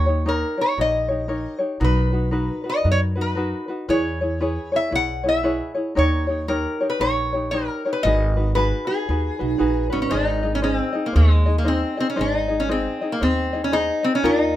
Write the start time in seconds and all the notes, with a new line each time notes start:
Already playing: D#2 C#5
0.06 D#4 G4 C#5
0.25 D#4 G4 A#4 C#5
0.58 D#4 G4 C#5
0.78 A#1 D#4 G4 A#4 C#5 D#5
1.08 D#4 G4 C#5
1.28 D#4 G4 A#4 C#5
1.59 D#4 G4 C#5
1.80 B1 D#4 F#4 A#4 B4
1.84 B4
2.12 D#4 F#4 B4
2.31 D#4 F#4 A#4 B4
2.64 D#4 F#4 B4
2.70 D#5
2.83 F#2 D#4 F#4 A#4 B4
2.92 C#5
3.15 D#4 F#4 B4
3.21 B4
3.35 D#4 F#4 A#4 B4
3.68 D#4 F#4 B4
3.88 E2 E4 G#4 B4 C#5
4.21 E4 G#4 C#5
4.40 E4 G#4 B4 C#5
4.72 E4 G#4 C#5
4.76 E5
4.91 B1 E4 G#4 B4 C#5
4.95 F#5
5.23 E4 G#4 C#5
5.29 E5
5.43 E4 G#4 B4 C#5
5.74 E4 G#4 C#5
5.95 D#2 D#4 G4 A#4 C#5
6.27 D#4 G4 C#5
6.48 D#4 G4 A#4 C#5
6.80 D#4 G4 C#5
6.90 B4
6.99 A#1 D#4 G4 A#4 C#5
7.33 D#4 G4 C#5
7.51 D#4 G4 A#4 C#5
7.85 D#4 G4 C#5
7.93 B4
8.03 G#1 D#4 F#4 G#4 B4 D#5
8.36 D#4 F#4 B4
8.55 D#4 F#4 G#4 B4
8.87 D#4 F#4 G#4 B4
9.09 D#2 D#4 F#4 G#4 B4
9.39 B1 D#4 F#4 B4
9.58 A#1 D#4 F#4 G#4 B4
9.90 G#1 C#4 D#4 F#4 B4
10.02 C#4
10.10 G#1 D4 D#4 G#4 C5 D#5
10.28 D#4
10.43 D#4 G#4 D#5
10.55 C#4
10.62 C#4 D#4 G#4 C5 D#5
10.75 C4
10.92 D#4 G#4 D#5
11.06 A#3
11.13 D#2 G#3 D#4 G#4 C5 D#5
11.46 D#4 G#4 D#5
11.58 A#3
11.64 C4 D#4 G#4 C5 D#5
11.97 C4 D#4 G#4 D#5
12.10 C#4
12.16 G#1 D#4 G#4 C5 D#5
12.21 D#4
12.48 D#4 G#4 D#5
12.60 C#4
12.69 C4 D#4 G#4 C5 D#5
13.01 D#4 G#4 D#5
13.12 A#3
13.20 D#2 C4 D#4 G#4 C5 D#5
13.53 D#4 G#4 D#5
13.64 C#4
13.72 D#4 G#4 C5 D#5
14.03 C4 D#4 G#4 D#5
14.15 C#4
14.23 D#2 D#4 F4 G4 A#4